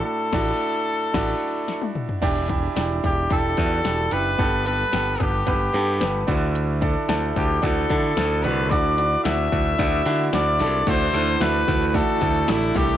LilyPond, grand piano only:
<<
  \new Staff \with { instrumentName = "Grand piano" } { \time 4/4 \key d \mixolydian \tempo 4 = 111 r8 <d' e' fis'>8 r4 <d' e' fis'>8 r4. | <d' e' g'>8 <d' e' g'>8 <d' e' g'>8 <d' e' g'>8 <d' e' g'>8 <d' e' fis'>8 <d' e' g'>8 <d' e' g'>8 | <b g' a'>8 <b g' a'>8 <b g' a'>8 <b g' b'>8 <b g' b'>8 <b g' a'>8 <b g' b'>8 <d' e' fis'>8~ | <d' e' fis'>8 <d' e' a'>8 <d' e' a'>8 <d' e' fis'>8 <d' e' fis'>8 <d' e' a'>8 <d' e' a'>8 <d' e' fis'>8 |
<d' e' fis'>8 <d' e' fis'>8 <d' e' fis'>8 <d' e' fis'>8 <d' e' fis'>8 <d' e' fis'>8 <d' e' fis'>8 <d' e' a'>8 | <a d' e' fis'>8 <a d' e' a'>8 <a d' e' fis'>8 <a d' e' fis'>8 <a d' e' fis'>8 <a d' e' a'>8 <a d' e' a'>8 <a d' e' a'>8 | }
  \new Staff \with { instrumentName = "Grand piano" } { \clef bass \time 4/4 \key d \mixolydian r1 | e4. r2 r8 | g,4. r2 d8~ | d4 r2 r8 d8~ |
d4 r2. | d4. r2 r8 | }
>>